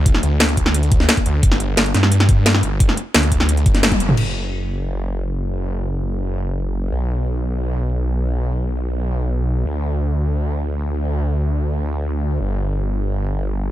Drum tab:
CC |----------------|----------------|----------------|x---------------|
HH |x-x-xxx-xxx-xxx-|x-x-xxx-xxx-x-x-|x-x-xxx-xxxxxxx-|----------------|
SD |-o--o--o---oo---|-o--o-oo-o--oo--|-o--o--o---oo---|----------------|
T1 |----------------|----------------|------------oo--|----------------|
T2 |----------------|----------------|---------------o|----------------|
BD |o-----o---o--o--|o---------o-----|o-----o---o--o--|----------------|

CC |----------------|----------------|----------------|----------------|
HH |----------------|----------------|----------------|----------------|
SD |----------------|----------------|----------------|----------------|
T1 |----------------|----------------|----------------|----------------|
T2 |----------------|----------------|----------------|----------------|
BD |----------------|----------------|----------------|----------------|

CC |----------------|----------------|
HH |----------------|----------------|
SD |----------------|----------------|
T1 |----------------|----------------|
T2 |----------------|----------------|
BD |----------------|----------------|